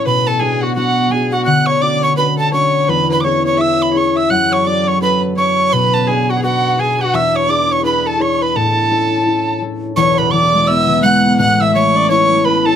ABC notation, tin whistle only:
X:1
M:4/4
L:1/16
Q:"Swing" 1/4=169
K:Emix
V:1 name="Tin whistle"
b2 a2 g2 f2 f4 g2 f2 | f'2 c'2 d'2 c'2 b2 a2 c'3- c'/2 c'/2 | b2 b3/2 d'/2 c'2 c'2 e'2 b2 c'2 e'2 | f'2 c'2 d'2 c'2 b2 z2 c'4 |
b2 a2 g2 f2 f4 g2 f2 | e'2 c'2 d'2 c'2 b2 a2 c'2 b2 | a12 z4 | c'2 b2 d'4 e'4 f'4 |
f'2 e'2 c'4 c'4 b2 a2 |]